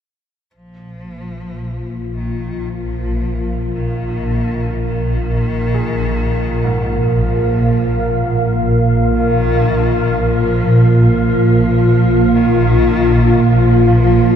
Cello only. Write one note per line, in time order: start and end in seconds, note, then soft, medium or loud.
0.56 2.12 F3 loud
2.16 2.71 D#3 medium
2.70 3.77 F3 medium
3.75 4.83 D#3 medium
4.86 7.01 D#3 medium
7.00 8.60 F3 medium
9.11 10.21 D#3 medium
10.20 11.27 F3 medium
11.28 12.37 F3 medium
12.36 13.45 D#3 medium
13.44 14.36 F3 loud